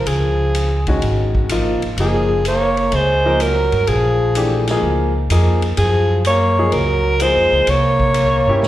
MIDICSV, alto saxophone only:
0, 0, Header, 1, 2, 480
1, 0, Start_track
1, 0, Tempo, 475059
1, 72, Time_signature, 4, 2, 24, 8
1, 8769, End_track
2, 0, Start_track
2, 0, Title_t, "Alto saxophone"
2, 0, Program_c, 0, 65
2, 75, Note_on_c, 0, 68, 82
2, 882, Note_off_c, 0, 68, 0
2, 2021, Note_on_c, 0, 68, 88
2, 2455, Note_off_c, 0, 68, 0
2, 2506, Note_on_c, 0, 73, 106
2, 2982, Note_on_c, 0, 72, 101
2, 2997, Note_off_c, 0, 73, 0
2, 3456, Note_on_c, 0, 70, 102
2, 3472, Note_off_c, 0, 72, 0
2, 3921, Note_on_c, 0, 68, 94
2, 3936, Note_off_c, 0, 70, 0
2, 4726, Note_off_c, 0, 68, 0
2, 5840, Note_on_c, 0, 68, 96
2, 6284, Note_off_c, 0, 68, 0
2, 6333, Note_on_c, 0, 73, 107
2, 6806, Note_on_c, 0, 70, 101
2, 6821, Note_off_c, 0, 73, 0
2, 7298, Note_on_c, 0, 72, 110
2, 7314, Note_off_c, 0, 70, 0
2, 7776, Note_on_c, 0, 73, 109
2, 7791, Note_off_c, 0, 72, 0
2, 8769, Note_off_c, 0, 73, 0
2, 8769, End_track
0, 0, End_of_file